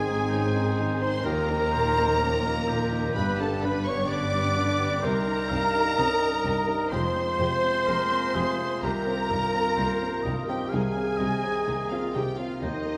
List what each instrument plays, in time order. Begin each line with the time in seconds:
Already playing: double bass section G#1, grand piano G#2 D#3 D#4, cello section G#2, french horn section D#3 C4, oboe G#4, viola section G#4, clarinet G#4, flute G#5, violin section G#5
0.05 violin section C4 G#4, grand piano D#4
0.29 grand piano C#4, violin section D#4, oboe C5
0.53 violin section C4 G#4, grand piano D#4
0.77 grand piano D#3, violin section D#4
1.01 violin section C4 G#4 C6, grand piano D#4, viola section C5, clarinet C5, flute C6
1.24 cello section D#2, grand piano D#2, double bass section D#2, french horn section F3 A#3, violin section D#4 F4 A#5, oboe A#4, viola section A#4, clarinet A#4, flute A#5
1.50 violin section A#3 D#4, grand piano D#4
1.72 grand piano A#2, violin section D#4 F4, oboe C5
1.97 violin section A#3 D#4, grand piano D#4
2.19 grand piano C#4, violin section D#4 F4, oboe A#4
2.45 violin section A#3 D#4, grand piano D#4
2.68 grand piano A#2, violin section D#4 F4, oboe G4
2.92 violin section A#3 D#4, grand piano D#4
3.15 double bass section G1, cello section G2, grand piano G2, french horn section G3 B3, violin section D4 B5, viola section B4, clarinet B4, flute B5
3.38 violin section B3 G4 A5, grand piano D4, viola section A4, clarinet A4, flute A5
3.61 grand piano D3, violin section D4 B5, viola section B4, clarinet B4, flute B5
3.85 violin section B3 G4 C#6, grand piano D4, viola section C#5, clarinet C#5, flute C#6
4.08 grand piano C#4, violin section D4 D6, oboe B4, viola section D5, clarinet D5, flute D6
4.33 violin section B3 G4, grand piano D4
4.57 grand piano D3, violin section D4
4.79 violin section B3 G4, grand piano D4
5.02 grand piano C2, double bass section C2, cello section C3, violin section G3 D#4 A#5, french horn section D#4, viola section A#4, clarinet A#4, oboe C5, flute A#5
5.27 grand piano D#4
5.49 double bass section C2, grand piano G2, cello section C3, violin section G3 D#4, oboe F5
5.75 grand piano D#4
5.98 double bass section C2, cello section C3, violin section G3 D#4, grand piano C#4, oboe D#5
6.22 grand piano D#4
6.45 double bass section C2, grand piano G2, cello section C3, violin section G3 D#4
6.68 grand piano D#4
6.91 double bass section F1, cello section F2, grand piano F2, violin section G#3 G4 C6, french horn section G#3 F4, oboe C5, clarinet C5, viola section C5, flute C6
7.16 grand piano C4
7.39 double bass section F1, cello section F2, grand piano C3, violin section G#3 G4
7.64 grand piano C4
7.86 double bass section F1, cello section F2, violin section G#3 G4, grand piano A#3, oboe A#4
8.11 grand piano C4
8.35 double bass section F1, cello section F2, grand piano C3, violin section G#3 G4, oboe G#4
8.59 grand piano C4
8.83 cello section C2, double bass section C2, grand piano C2, french horn section D#3, violin section G3 D#4 A#5, oboe G4, viola section A#4, clarinet A#4, flute A#5
9.07 grand piano C4
9.30 cello section C2, double bass section C2, grand piano G2, violin section G3 D#4, oboe A#4
9.55 grand piano C4
9.77 cello section C2, double bass section C2, violin section G3 D#4, grand piano A#3, oboe C5
10.02 grand piano C4
10.22 cello section C2, double bass section C2, grand piano G2, violin section G3 D#4, oboe D#5
10.48 grand piano C4, viola section G4, clarinet G4, violin section G5, flute G5
10.69 double bass section C2, cello section C2, grand piano C2, violin section G#3 D#4 G#5, clarinet G#4, viola section G#4, oboe F5, flute G#5
10.75 french horn section G#4
10.96 grand piano C4
11.17 cello section C2, grand piano C3, violin section G#3 D#4, oboe D#5
11.21 double bass section C2
11.44 grand piano C4
11.66 cello section C2, double bass section C2, violin section G#3 D#4, grand piano A#3
11.89 grand piano C4, viola section F4, clarinet F4, violin section F5, flute F5
12.13 cello section C2, double bass section C2, grand piano C3, violin section G#3 D#4 G5, viola section G4, clarinet G4, flute G5
12.37 grand piano C4, viola section F4, clarinet F4, flute F5, violin section F5
12.60 grand piano D#2, cello section D#2, double bass section D#2, french horn section F3 A#4, violin section A#3 D#4 D#5, clarinet D#4, viola section D#4, oboe C5, flute D#5
12.85 grand piano A#3